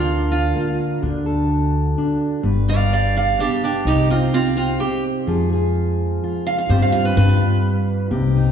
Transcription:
0.00 0.51 D2 medium
0.00 1.00 D3 medium
0.00 2.41 D3 medium
0.00 1.02 D4 medium
0.00 3.81 D4 medium
0.00 0.30 F4 medium
0.00 1.01 F4 medium
0.00 1.01 A#4 medium
0.32 1.00 F4 medium
0.56 1.03 A#3 medium
1.02 1.93 D2 medium
1.02 2.41 D3 medium
1.02 1.97 D4 medium
1.02 2.42 F#4 medium
1.02 2.42 A4 medium
1.26 2.41 A4 medium
1.98 2.42 D4 medium
2.42 3.34 G1 medium
2.42 3.85 G2 medium
2.42 3.83 B3 medium
2.42 5.23 G4 medium
2.42 3.83 B4 medium
2.68 3.86 D4 medium
2.68 2.92 D5 medium
2.68 2.92 F5 medium
2.93 3.14 D5 medium
2.93 3.15 F5 medium
3.16 3.38 D5 medium
3.16 3.39 F5 medium
3.39 3.83 B3 medium
3.39 3.61 D4 medium
3.39 3.63 G4 medium
3.64 3.85 D4 medium
3.64 3.86 G4 medium
3.85 4.76 C2 medium
3.85 5.26 C3 medium
3.85 5.28 C3 medium
3.85 7.13 C4 medium
3.85 5.26 D#4 medium
3.85 4.09 D#4 medium
3.85 4.08 D#4 medium
3.85 4.10 G4 medium
4.10 4.32 C4 medium
4.10 5.25 D#4 medium
4.10 4.33 F4 medium
4.34 4.55 C4 medium
4.34 4.56 F4 medium
4.57 4.79 C4 medium
4.57 4.80 F4 medium
4.80 5.24 C4 medium
4.80 5.03 G4 medium
5.26 6.18 F2 medium
5.26 6.69 F3 medium
5.26 6.67 G#3 medium
5.26 8.07 F4 medium
5.26 5.51 G#4 medium
5.53 6.67 G#4 medium
6.24 6.67 F4 medium
6.47 6.57 F5 medium
6.58 6.69 F5 medium
6.68 7.15 G2 medium
6.68 7.14 G2 medium
6.68 8.09 G3 medium
6.68 7.32 G3 medium
6.68 7.14 C4 medium
6.68 6.92 F4 medium
6.68 6.81 C5 medium
6.72 8.11 G4 medium
6.82 6.91 F5 medium
6.92 7.14 F4 medium
6.92 7.04 F5 medium
7.05 7.16 B4 medium
7.16 8.11 G2 medium
7.16 8.07 G2 medium
7.16 7.29 D4 medium
7.16 8.10 D4 medium
7.16 8.08 B4 medium
7.16 8.10 B4 medium
7.29 7.39 F4 medium
7.40 8.08 F4 medium
8.11 8.52 C2 medium
8.11 8.52 C3 medium
8.11 8.52 C4 medium
8.11 8.52 D#4 medium
8.11 8.52 G4 medium
8.36 8.52 D#4 medium

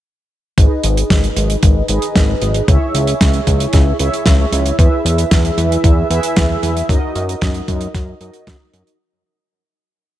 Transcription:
0.58 0.68 G#1 loud
0.58 1.86 D#4 medium
0.58 1.86 G#4 medium
0.58 1.86 B4 medium
0.58 1.86 D#5 loud
0.58 kick loud
0.58 closed hi-hat medium
0.83 1.04 G#1 medium
0.83 closed hi-hat medium
0.97 closed hi-hat medium
1.10 1.30 G#1 medium
1.10 kick loud
1.10 snare loud
1.10 closed hi-hat medium
1.24 closed hi-hat medium
1.36 1.56 G#1 loud
1.36 closed hi-hat medium
1.50 closed hi-hat medium
1.63 1.83 G#1 medium
1.63 kick loud
1.63 closed hi-hat medium
1.88 1.99 G#1 medium
1.88 2.65 D#4 medium
1.88 2.65 G#4 medium
1.88 2.65 B4 medium
1.88 2.65 D#5 loud
1.88 closed hi-hat medium
2.02 closed hi-hat medium
2.16 2.35 G#1 loud
2.16 kick loud
2.16 snare loud
2.16 closed hi-hat medium
2.42 2.62 G#1 medium
2.42 closed hi-hat medium
2.54 closed hi-hat medium
2.68 2.78 C#2 medium
2.68 3.97 E4 medium
2.68 3.97 G#4 medium
2.68 3.97 C#5 medium
2.68 3.97 E5 loud
2.68 kick loud
2.68 closed hi-hat medium
2.95 3.14 C#2 medium
2.95 closed hi-hat medium
3.07 closed hi-hat medium
3.21 3.41 C#2 medium
3.21 kick loud
3.21 snare loud
3.21 closed hi-hat medium
3.34 closed hi-hat medium
3.47 3.67 C#2 medium
3.47 kick medium
3.47 closed hi-hat medium
3.60 closed hi-hat medium
3.73 3.93 C#2 loud
3.73 kick loud
3.73 snare soft
3.73 closed hi-hat medium
3.99 4.10 C#2 medium
3.99 4.76 E4 medium
3.99 4.76 G#4 medium
3.99 4.76 C#5 medium
3.99 4.76 E5 loud
3.99 closed hi-hat medium
4.14 closed hi-hat medium
4.26 4.46 C#2 loud
4.26 kick loud
4.26 snare loud
4.26 closed hi-hat medium
4.53 4.72 C#2 medium
4.53 closed hi-hat medium
4.66 closed hi-hat medium
4.79 4.89 E2 loud
4.79 6.07 E4 medium
4.79 6.07 G#4 medium
4.79 6.07 B4 medium
4.79 6.07 E5 loud
4.79 kick loud
4.79 closed hi-hat medium
5.05 5.25 E2 medium
5.05 closed hi-hat medium
5.18 closed hi-hat medium
5.31 5.51 E2 loud
5.31 kick loud
5.31 snare loud
5.31 closed hi-hat medium
5.45 closed hi-hat medium
5.58 5.77 E2 medium
5.58 closed hi-hat medium
5.72 closed hi-hat medium
5.84 6.04 E2 medium
5.84 kick loud
5.84 closed hi-hat medium
6.10 6.20 E2 medium
6.10 6.86 E4 medium
6.10 6.86 G#4 medium
6.10 6.86 B4 medium
6.10 6.86 E5 loud
6.10 closed hi-hat medium
6.23 closed hi-hat medium
6.36 6.56 E2 loud
6.36 kick loud
6.36 snare loud
6.36 closed hi-hat medium
6.63 6.83 E2 medium
6.63 closed hi-hat medium
6.77 closed hi-hat medium
6.89 6.99 F#2 loud
6.89 8.18 D#4 medium
6.89 8.18 F#4 medium
6.89 8.18 A#4 medium
6.89 8.18 D#5 loud
6.89 kick loud
6.89 closed hi-hat medium
7.15 7.35 F#2 medium
7.15 closed hi-hat medium
7.29 closed hi-hat medium
7.41 7.62 F#2 loud
7.41 kick loud
7.41 snare loud
7.41 closed hi-hat medium
7.54 closed hi-hat medium
7.68 7.88 F#2 loud
7.68 kick medium
7.68 closed hi-hat medium
7.81 closed hi-hat medium
7.95 8.14 F#2 medium
7.95 kick loud
7.95 snare soft
7.95 closed hi-hat medium
8.21 8.31 F#2 medium
8.21 8.97 D#4 medium
8.21 8.97 F#4 medium
8.21 8.97 A#4 medium
8.21 8.97 D#5 loud
8.21 closed hi-hat medium
8.34 closed hi-hat medium
8.47 8.57 F#2 loud
8.47 kick loud
8.47 snare loud
8.47 closed hi-hat medium
8.73 8.83 F#2 medium
8.73 closed hi-hat medium
8.87 closed hi-hat medium

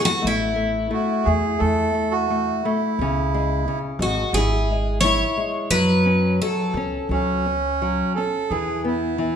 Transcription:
0.00 0.22 B3 medium
0.05 0.23 F#4 loud
0.22 0.91 A1 medium
0.22 0.55 A3 medium
0.27 2.62 E4 medium
0.56 0.89 A3 soft
0.91 1.25 A3 medium
0.91 1.28 F#4 medium
1.24 1.49 E2 medium
1.24 1.59 A3 medium
1.24 1.61 G#4 medium
1.58 2.50 E2 medium
1.58 1.93 A3 medium
1.58 2.13 A4 loud
1.94 2.28 A3 soft
2.11 2.65 F#4 medium
2.30 2.64 A3 medium
2.64 2.98 A3 medium
2.64 3.79 E4 medium
2.99 3.65 C#2 medium
2.99 3.67 C#3 medium
3.34 3.66 G#3 medium
3.68 4.00 C#3 medium
3.99 4.22 G#1 loud
3.99 4.34 G#3 medium
3.99 4.34 F#4 medium
4.33 5.22 G#1 medium
4.33 5.00 G#4 medium
4.37 4.69 E4 medium
4.71 5.03 G#3 soft
5.01 5.37 E4 medium
5.01 5.70 C#5 loud
5.37 5.71 G#3 soft
5.70 6.38 F#2 medium
5.70 6.41 F#3 medium
5.70 6.41 B4 loud
6.06 6.40 C#4 medium
6.42 6.75 F#3 medium
6.42 7.07 A4 medium
6.74 6.97 C#2 medium
6.74 7.10 C#4 medium
7.09 8.01 C#2 medium
7.09 7.45 F#3 medium
7.09 8.13 C#4 medium
7.46 7.80 C#4 soft
7.82 8.16 F#3 medium
8.15 8.51 C#4 medium
8.15 8.52 A4 medium
8.49 9.18 E2 medium
8.49 9.17 E3 medium
8.49 8.82 G#4 medium
8.84 9.19 B3 medium
8.84 9.35 E4 medium
9.18 9.36 E3 medium

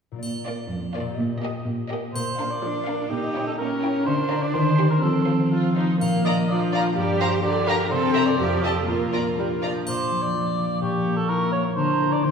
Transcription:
0.12 1.00 A#2 soft
0.12 1.04 A#3 soft
0.16 1.16 F4 soft
0.16 1.18 D5 soft
0.23 0.61 A#2 soft
0.23 triangle soft
0.46 0.65 A#3 soft
0.46 0.64 F4 soft
0.46 0.64 D5 soft
0.71 1.09 F2 soft
0.94 1.13 A#3 soft
0.94 1.12 F4 soft
0.94 1.12 D5 soft
1.01 2.08 A#2 soft
1.05 2.38 A#3 soft
1.10 2.13 G4 soft
1.14 2.15 D#5 soft
1.19 1.56 A#2 medium
1.42 1.61 A#3 soft
1.42 1.60 G4 soft
1.42 1.60 D#5 soft
1.66 2.05 A#2 soft
1.90 2.09 A#3 soft
1.90 2.09 G4 soft
1.90 2.08 D#5 soft
2.14 3.10 A#2 soft
2.14 2.54 A#3 soft
2.14 2.52 C5 medium
2.14 triangle soft
2.39 4.57 A#3 soft
2.39 2.57 D4 soft
2.39 2.57 A#4 soft
2.39 2.57 F5 soft
2.51 3.10 D5 soft
2.63 3.01 F3 soft
2.63 3.08 D4 soft
2.63 4.30 A#4 soft
2.87 3.05 D4 soft
2.87 3.13 F4 soft
2.87 3.05 A#4 soft
2.87 3.05 F5 soft
3.10 4.09 A#2 soft
3.10 3.49 A#3 soft
3.10 3.59 D#4 soft
3.10 3.46 G4 soft
3.35 4.09 C#4 soft
3.35 3.53 E4 soft
3.35 3.53 C#5 soft
3.35 3.53 G5 soft
3.47 3.52 A4 soft
3.58 3.97 A#3 medium
3.58 4.06 C#4 soft
3.58 4.09 G4 soft
3.58 4.05 A#4 medium
3.82 4.09 E4 soft
3.82 4.01 E4 soft
3.82 4.01 C#5 soft
3.82 4.00 G5 soft
4.06 4.44 D3 medium
4.06 4.56 D3 soft
4.06 5.03 D4 medium
4.06 4.44 C5 medium
4.31 4.57 F4 soft
4.31 4.49 F4 soft
4.31 4.57 A#4 soft
4.31 4.49 D5 soft
4.31 4.48 A#5 soft
4.42 4.53 D5 medium
4.54 4.93 D#3 medium
4.54 5.05 D#3 soft
4.54 4.90 C5 medium
4.78 5.05 G4 soft
4.78 4.97 G4 soft
4.78 5.50 C5 soft
4.78 4.97 C5 soft
4.78 4.96 C6 soft
4.90 5.01 A#4 soft
5.02 7.93 F3 soft
5.02 5.42 F3 medium
5.02 5.75 C4 soft
5.02 5.50 A4 medium
5.27 5.75 F4 soft
5.27 5.46 F4 soft
5.27 5.45 C5 soft
5.27 5.45 C6 soft
5.52 5.75 F4 soft
5.52 6.03 C5 soft
5.76 6.00 D#4 soft
5.76 6.72 F4 soft
5.76 5.95 F4 soft
5.76 5.95 C5 soft
5.76 5.94 C6 soft
6.00 6.99 A#2 soft
6.00 6.41 A#3 soft
6.00 6.23 F5 medium
6.00 triangle soft
6.25 7.93 D4 soft
6.25 6.33 F4 soft
6.25 6.33 D5 soft
6.25 6.49 D#5 medium
6.25 6.34 A#5 soft
6.50 6.89 F3 soft
6.50 6.94 F4 soft
6.50 7.43 A#4 soft
6.50 6.61 D5 medium
6.73 6.81 F4 soft
6.73 7.19 F4 soft
6.73 6.80 D5 soft
6.73 6.84 F5 medium
6.73 6.82 A#5 soft
6.96 7.93 G2 soft
6.96 7.36 G3 medium
6.96 7.89 G4 soft
6.96 7.20 D5 medium
7.20 7.93 F4 soft
7.20 7.28 G4 soft
7.20 7.32 C5 medium
7.20 7.28 F5 soft
7.20 7.29 A#5 soft
7.44 7.83 D3 medium
7.44 8.14 A#4 soft
7.44 7.69 D5 medium
7.67 7.74 G4 soft
7.67 8.14 G4 soft
7.67 7.90 A#4 medium
7.67 7.74 F5 soft
7.67 7.76 A#5 soft
7.91 8.41 C3 soft
7.91 8.31 C4 medium
7.91 8.38 A4 medium
7.91 8.28 C5 medium
8.14 8.22 G4 soft
8.14 8.62 G4 soft
8.14 8.41 A#4 soft
8.14 8.22 E5 soft
8.14 8.23 A#5 soft
8.26 8.64 D5 medium
8.39 8.90 F2 soft
8.39 8.80 F3 soft
8.39 8.87 G4 soft
8.63 8.90 G4 soft
8.63 8.72 G4 soft
8.63 8.87 A4 medium
8.63 8.90 A4 soft
8.63 8.72 D#5 soft
8.63 8.72 A5 soft
8.88 9.86 A#2 soft
8.88 9.30 A#3 soft
8.88 9.61 F4 soft
8.88 9.60 A#4 soft
9.13 10.84 D4 soft
9.13 9.21 F4 soft
9.13 9.21 D5 soft
9.13 9.22 A#5 soft
9.38 9.47 G3 soft
9.38 12.00 A#4 soft
9.62 9.86 F3 soft
9.62 9.70 F4 soft
9.62 10.33 F4 soft
9.62 9.70 D5 soft
9.62 9.71 A#5 soft
9.85 10.81 A#2 soft
9.85 11.72 A#3 soft
9.85 10.24 C5 medium
9.85 10.78 D6 soft
9.85 triangle soft
10.11 10.57 F3 soft
10.22 10.81 D5 medium
10.34 10.84 F4 soft
10.58 10.84 F3 soft
10.82 11.79 A#2 soft
10.82 11.16 G4 medium
10.82 11.77 C#6 soft
11.06 11.53 A#3 soft
11.16 11.30 A4 medium
11.28 11.79 E4 soft
11.28 11.52 A#4 medium
11.52 12.27 A#3 soft
11.52 11.63 C#5 medium
11.76 12.26 D3 soft
11.76 12.23 D4 medium
11.76 12.14 C5 medium
11.76 12.24 A#5 soft
12.01 12.26 F4 soft
12.01 12.27 A#4 soft
12.12 12.25 D5 medium
12.24 12.31 D#3 soft
12.24 12.31 D#4 soft
12.24 12.31 C5 medium
12.24 12.31 C6 soft

